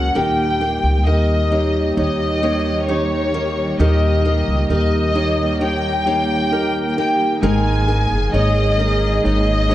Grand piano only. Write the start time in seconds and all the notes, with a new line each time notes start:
Already playing: C#4 F#4 G#4 A#4 C#5
0.15 A#2 D#4 G4 A#4
0.60 D#4 G4 A#4
1.06 D#4 G4 A#4
1.52 D#4 G4 C#5
1.97 D#4 G4 C#5
2.42 D#4 G4 C#5
2.88 D#4 G4 C#5
3.33 D#4 G4 A#4
3.79 A#2 D#4 G4 A#4
4.25 D#4 G4 A#4
4.70 D#4 G4 A#4
5.15 D#4 G4 C#5
5.60 D#4 G4 C#5
6.05 D#4 G4 C#5
6.51 D#4 G4 A#4
6.97 D#4 G4 A#4
7.42 G#2 D#3 D#4 G#4 A#4
7.88 D#4 G#4 A#4
8.33 D#4 G#4 C#5
8.78 D#4 G#4 A#4
9.23 D#4 G#4 C#5
9.68 D#4 G#4 C#5